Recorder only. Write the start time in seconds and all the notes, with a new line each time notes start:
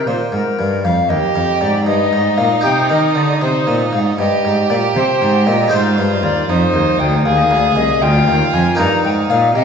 0.07 C5
0.32 A#4
0.84 F5
1.09 D#5
1.61 D5
1.86 D#5
2.38 F5
2.64 G5
2.91 D#5
3.15 D5
3.42 C5
3.93 F5
4.19 D#5
4.69 D5
4.96 C5
5.46 D#5
5.73 C5
6.23 D5
6.49 C5
6.99 G5
7.26 F5
7.76 D#5
8.02 G5
8.53 G#5
8.80 A#5
9.05 G5
9.30 F5
9.55 D#5